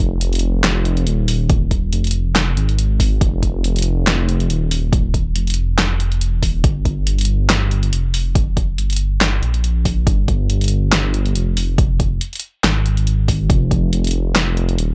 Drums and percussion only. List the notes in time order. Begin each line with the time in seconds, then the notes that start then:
0.21 closed hi-hat
0.33 closed hi-hat
0.35 closed hi-hat
0.39 closed hi-hat
0.64 snare, clap, closed hi-hat
0.85 closed hi-hat
0.97 closed hi-hat
1.07 closed hi-hat
1.28 open hi-hat
1.49 kick, closed hi-hat
1.71 kick, closed hi-hat
1.93 closed hi-hat
2.04 closed hi-hat
2.07 closed hi-hat
2.11 closed hi-hat
2.36 snare, clap, closed hi-hat
2.57 closed hi-hat
2.69 closed hi-hat
2.79 closed hi-hat
3.00 kick, open hi-hat
3.21 kick, closed hi-hat
3.43 kick, closed hi-hat
3.64 closed hi-hat
3.76 closed hi-hat
3.79 closed hi-hat
3.82 closed hi-hat
4.07 snare, clap, closed hi-hat
4.29 closed hi-hat
4.40 closed hi-hat
4.50 closed hi-hat
4.71 open hi-hat
4.93 kick, closed hi-hat
5.14 kick, closed hi-hat
5.36 closed hi-hat
5.47 closed hi-hat
5.50 closed hi-hat
5.54 closed hi-hat
5.79 snare, clap, closed hi-hat
6.00 closed hi-hat
6.12 closed hi-hat
6.21 closed hi-hat
6.43 kick, open hi-hat
6.64 kick, closed hi-hat
6.85 kick, closed hi-hat
7.07 closed hi-hat
7.18 closed hi-hat
7.21 closed hi-hat
7.25 closed hi-hat
7.50 snare, clap, closed hi-hat
7.71 closed hi-hat
7.83 closed hi-hat
7.93 closed hi-hat
8.14 open hi-hat
8.35 kick, closed hi-hat
8.57 kick, closed hi-hat
8.78 closed hi-hat
8.90 closed hi-hat
8.93 closed hi-hat
8.96 closed hi-hat
9.21 snare, clap, closed hi-hat
9.43 closed hi-hat
9.54 closed hi-hat
9.64 closed hi-hat
9.85 kick, open hi-hat
10.07 kick, closed hi-hat
10.28 kick, closed hi-hat
10.50 closed hi-hat
10.61 closed hi-hat
10.64 closed hi-hat
10.68 closed hi-hat
10.93 snare, clap, closed hi-hat
11.14 closed hi-hat
11.26 closed hi-hat
11.35 closed hi-hat
11.57 open hi-hat
11.78 kick, closed hi-hat
12.00 kick, closed hi-hat
12.21 closed hi-hat
12.33 closed hi-hat
12.36 closed hi-hat
12.39 closed hi-hat
12.64 snare, clap, closed hi-hat
12.86 closed hi-hat
12.97 closed hi-hat
13.07 closed hi-hat
13.28 kick, open hi-hat
13.50 kick, closed hi-hat
13.71 kick, closed hi-hat
13.93 closed hi-hat
14.04 closed hi-hat
14.07 closed hi-hat
14.11 closed hi-hat
14.36 snare, clap, closed hi-hat
14.57 closed hi-hat
14.69 closed hi-hat
14.78 closed hi-hat